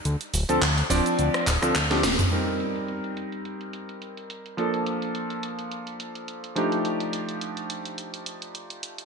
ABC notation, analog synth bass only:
X:1
M:4/4
L:1/16
Q:"Swing 16ths" 1/4=106
K:Cdor
V:1 name="Analog synth bass" clef=bass
D,, z D,,, D,, D,, z D,,, z D,, z D,,, D,, D,,2 D,,, z | z16 | z16 | z16 |]